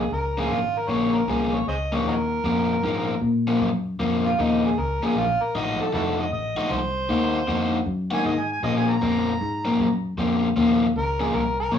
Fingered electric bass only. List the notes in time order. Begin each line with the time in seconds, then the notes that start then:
0.11 C#2
0.49 G#1
0.88 A#1
1.27 C2
1.66 C#2
2.05 D#2
2.44 F2
2.83 G#2
3.21 A#2
3.61 F#2
4.00 F2
4.39 D#2
4.77 C#2
5.15 A#1
5.41 muted fingered electric bass stroke
5.55 A1
5.79 muted fingered electric bass stroke
5.94 F1
6.32 A1
6.58 muted fingered electric bass stroke
6.70 C2
7.09 D#2
7.48 F2
7.86 F#2
8.25 G#2
8.63 A#2
9.02 F2
9.41 G#2
9.79 F#2
10.18 F2
10.57 D#2
10.96 C#2
11.34 C2
11.72 A#1